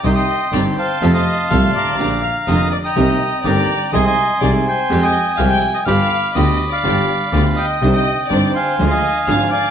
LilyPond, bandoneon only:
\new Staff \with { instrumentName = "Bandoneon" } { \time 4/4 \key c \minor \tempo 4 = 124 << { ees'''16 ees'''8. d'''8 c'''8. ees'''8. f'''8 d'''8~ | d'''8 f'''8 ees'''8 d'''16 ees'''4~ ees'''16 d'''4 | ees'''16 ees'''8. d'''8 c'''8. ees'''8. f'''16 g'''8 ees'''16 | f'''4 ees'''8. d'''4~ d'''16 d'''8 ees'''8~ |
ees'''16 ees'''8. d'''8 c'''8. ees'''8. f'''8 d'''8 | } \\ { <g'' c'''>16 <g'' c'''>4~ <g'' c'''>16 <f'' a''>8. <a'' c'''>4~ <a'' c'''>16 <f'' bes''>8~ | <f'' bes''>4. r16 <g'' bes''>4~ <g'' bes''>16 <g'' bes''>4 | <aes'' c'''>16 <aes'' c'''>4~ <aes'' c'''>16 <g'' aes''>8. <g'' aes''>4.~ <g'' aes''>16 | <b'' d'''>4 b''8. <f'' b''>4.~ <f'' b''>16 g''8~ |
g''16 g''4~ g''16 <f'' aes''>8. aes''4~ aes''16 <f'' aes''>8 | } >> }